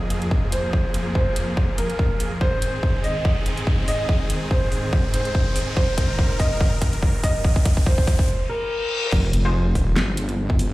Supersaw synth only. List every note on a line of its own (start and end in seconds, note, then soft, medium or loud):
0.00 2.37 F2 medium
0.00 2.37 F3 medium
0.00 2.38 A#3 medium
0.00 2.37 G#4 medium
2.41 8.24 G#2 medium
2.41 8.24 D#3 medium
2.41 8.24 C4 medium
2.41 5.73 G#4 medium
5.77 8.26 A#4 loud
9.12 10.73 F3 medium
9.12 10.73 G#3 medium
9.12 10.73 C4 loud